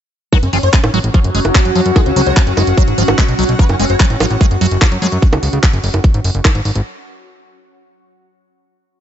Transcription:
0.33 5.26 F#3 medium
0.33 0.38 F#3 loud
0.33 5.22 C#4 medium
0.33 5.26 F#4 medium
0.33 0.38 B4 loud
0.33 kick loud
0.33 closed hi-hat medium
0.33 high bongo soft
0.43 0.49 F#1 medium
0.43 0.48 C#4 medium
0.43 closed hi-hat medium
0.53 0.59 F#1 loud
0.53 0.58 F3 medium
0.53 0.58 C#4 medium
0.53 open hi-hat loud
0.63 0.69 F#1 medium
0.63 5.22 F#4 medium
0.63 0.69 C#5 medium
0.63 closed hi-hat medium
0.69 5.22 F#5 medium
0.73 0.79 G#3 medium
0.73 0.79 C#4 medium
0.73 kick loud
0.73 clap loud
0.73 closed hi-hat medium
0.84 0.89 A1 medium
0.84 0.89 C#4 medium
0.84 closed hi-hat medium
0.84 high bongo medium
0.94 1.00 A1 loud
0.94 0.99 F#3 loud
0.94 open hi-hat medium
1.02 1.10 A1 loud
1.02 5.22 C#6 medium
1.02 closed hi-hat medium
1.14 1.20 F3 medium
1.14 kick loud
1.14 closed hi-hat medium
1.24 1.30 F#1 medium
1.24 closed hi-hat medium
1.35 1.40 F#1 loud
1.35 1.40 G#3 medium
1.35 open hi-hat loud
1.45 1.51 F#1 loud
1.45 closed hi-hat medium
1.45 high bongo soft
1.55 1.60 F#3 loud
1.55 kick loud
1.55 clap loud
1.55 closed hi-hat medium
1.65 1.71 F#2 medium
1.65 closed hi-hat medium
1.75 1.81 F#2 loud
1.75 1.81 F3 medium
1.75 open hi-hat medium
1.86 1.92 F#2 medium
1.86 closed hi-hat medium
1.96 2.01 G#3 medium
1.96 2.01 A4 loud
1.96 kick loud
1.96 closed hi-hat medium
1.96 high bongo medium
2.06 2.12 C#2 medium
2.06 2.11 C#4 medium
2.06 closed hi-hat medium
2.16 2.22 C#2 loud
2.16 2.22 F#3 loud
2.16 2.22 C#4 medium
2.16 open hi-hat loud
2.26 2.32 C#2 medium
2.26 2.32 C#5 medium
2.26 closed hi-hat medium
2.37 2.42 F3 medium
2.37 2.42 C#4 medium
2.37 kick loud
2.37 clap loud
2.37 closed hi-hat medium
2.47 2.53 F#1 medium
2.47 2.52 C#4 medium
2.47 closed hi-hat medium
2.57 2.63 F#1 loud
2.57 2.63 G#3 medium
2.57 open hi-hat loud
2.57 high bongo soft
2.67 2.73 F#1 medium
2.67 closed hi-hat medium
2.78 2.83 F#3 loud
2.78 kick loud
2.78 closed hi-hat medium
2.88 2.94 G#1 medium
2.88 closed hi-hat medium
2.98 3.04 G#1 loud
2.98 3.03 F3 medium
2.98 open hi-hat loud
3.08 3.14 G#1 medium
3.08 closed hi-hat medium
3.08 high bongo medium
3.18 3.24 G#3 medium
3.18 kick loud
3.18 clap loud
3.18 closed hi-hat medium
3.29 3.34 B1 medium
3.29 closed hi-hat medium
3.39 3.45 B1 loud
3.39 3.44 F#3 loud
3.39 open hi-hat loud
3.49 3.55 B1 medium
3.49 closed hi-hat medium
3.59 3.65 F3 medium
3.59 3.65 B4 loud
3.59 kick loud
3.59 closed hi-hat medium
3.69 3.75 F#1 medium
3.69 3.75 C#4 medium
3.69 closed hi-hat medium
3.69 high bongo soft
3.80 3.85 F#1 loud
3.80 3.85 G#3 medium
3.80 3.85 C#4 medium
3.80 open hi-hat loud
3.90 3.96 F#1 medium
3.90 3.95 C#5 loud
3.90 closed hi-hat medium
4.00 4.05 F#3 loud
4.00 4.05 C#4 medium
4.00 kick loud
4.00 clap loud
4.00 closed hi-hat medium
4.10 4.16 A1 medium
4.10 4.16 C#4 medium
4.10 closed hi-hat medium
4.20 4.26 A1 loud
4.20 4.26 F3 medium
4.20 open hi-hat loud
4.20 high bongo medium
4.31 4.36 A1 medium
4.31 closed hi-hat soft
4.41 4.46 G#3 medium
4.41 kick loud
4.41 closed hi-hat medium
4.51 4.57 F#1 medium
4.51 closed hi-hat medium
4.61 4.67 F#1 loud
4.61 4.67 F#3 loud
4.61 open hi-hat loud
4.71 4.77 F#1 loud
4.71 closed hi-hat medium
4.82 4.87 F3 medium
4.82 kick loud
4.82 clap loud
4.82 closed hi-hat medium
4.82 high bongo soft
4.92 4.98 F#2 medium
4.92 closed hi-hat medium
5.02 5.08 F#2 loud
5.02 5.07 G#3 medium
5.02 open hi-hat loud
5.12 5.18 F#2 medium
5.12 closed hi-hat medium
5.22 kick loud
5.22 closed hi-hat medium
5.33 5.38 C#2 medium
5.33 closed hi-hat medium
5.33 high bongo medium
5.43 5.49 C#2 loud
5.43 open hi-hat loud
5.53 5.59 C#2 medium
5.53 closed hi-hat soft
5.63 kick loud
5.63 clap loud
5.63 closed hi-hat medium
5.73 5.79 F#1 medium
5.73 closed hi-hat soft
5.84 5.89 F#1 loud
5.84 open hi-hat loud
5.94 6.00 F#1 medium
5.94 closed hi-hat soft
5.94 high bongo soft
6.04 kick loud
6.04 closed hi-hat medium
6.14 6.20 G#1 medium
6.14 closed hi-hat medium
6.24 6.30 F#1 loud
6.24 open hi-hat loud
6.35 6.41 F#1 loud
6.35 closed hi-hat medium
6.45 kick loud
6.45 clap loud
6.45 closed hi-hat medium
6.45 high bongo medium
6.55 6.61 G#1 medium
6.55 closed hi-hat medium
6.65 6.71 G#1 loud
6.65 open hi-hat loud
6.75 6.81 G#1 medium
6.75 closed hi-hat medium

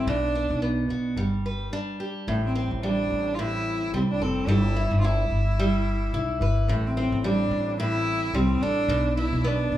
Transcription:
0.00 0.14 G3 medium
0.00 0.10 C4 loud
0.00 0.13 C4 medium
0.00 0.14 E4 medium
0.00 0.14 A4 medium
0.07 0.48 B1 medium
0.07 1.24 B2 medium
0.07 0.63 D4 medium
0.35 1.24 D4 medium
0.50 0.86 B1 medium
0.62 1.17 B3 medium
0.89 1.15 B1 medium
0.89 1.24 F#4 medium
1.16 1.68 G1 medium
1.16 2.83 G3 medium
1.46 2.35 B4 medium
1.73 2.34 D4 medium
2.00 3.42 G4 medium
2.27 2.68 A1 medium
2.27 3.38 A2 medium
2.27 2.44 A3 medium
2.46 2.55 C4 medium
2.55 4.55 C4 medium
2.55 2.69 C4 medium
2.71 3.07 A1 medium
2.83 3.93 G3 medium
2.83 3.36 D4 medium
3.10 3.89 A1 medium
3.34 3.41 F4 medium
3.39 4.55 A2 medium
3.39 3.94 E4 loud
3.92 4.18 C2 medium
3.92 4.48 G3 medium
3.92 4.02 C4 medium
4.11 4.23 D4 medium
4.20 4.45 F1 medium
4.20 4.51 C4 medium
4.20 4.55 A4 medium
4.47 4.88 G1 loud
4.47 5.59 G3 medium
4.47 4.98 E4 medium
4.76 5.04 E4 medium
4.91 5.27 G1 medium
5.00 5.07 F4 medium
5.04 6.14 E4 medium
5.04 6.42 E4 medium
5.30 6.09 G1 medium
5.59 7.24 G3 medium
6.14 6.39 B1 medium
6.14 6.97 E4 medium
6.41 6.66 G1 medium
6.41 6.75 B4 medium
6.68 7.09 A1 loud
6.68 7.78 A2 medium
6.68 6.88 A3 medium
6.87 6.97 C4 medium
6.97 8.96 C4 medium
6.97 7.23 C4 medium
7.12 7.48 A1 loud
7.24 8.33 G3 medium
7.24 7.76 D4 medium
7.51 8.30 A1 loud
7.80 8.89 A2 medium
7.80 8.37 E4 loud
8.33 8.59 C2 medium
8.33 8.96 G3 medium
8.33 8.64 C4 loud
8.61 8.87 A1 medium
8.61 9.17 D4 loud
8.61 8.96 A4 medium
8.88 9.29 B1 loud
8.88 9.78 B2 medium
9.17 9.78 D4 medium
9.17 9.48 E4 medium
9.33 9.68 B1 loud
9.44 9.78 B3 medium
9.44 9.78 D4 medium
9.72 9.78 B1 medium

